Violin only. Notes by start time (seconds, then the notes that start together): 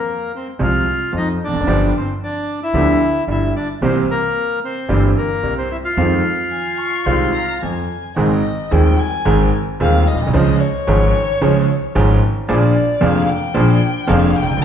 6.51 G#5
6.78 C#6
7.06 C6
7.35 A#5
7.63 G#5
8.17 D#5
8.73 G5
8.99 G#5
9.82 F5
10.08 D#5
10.35 D#5
10.60 C#5
12.49 D5
13.03 F5
13.29 G5
14.10 F5
14.36 G5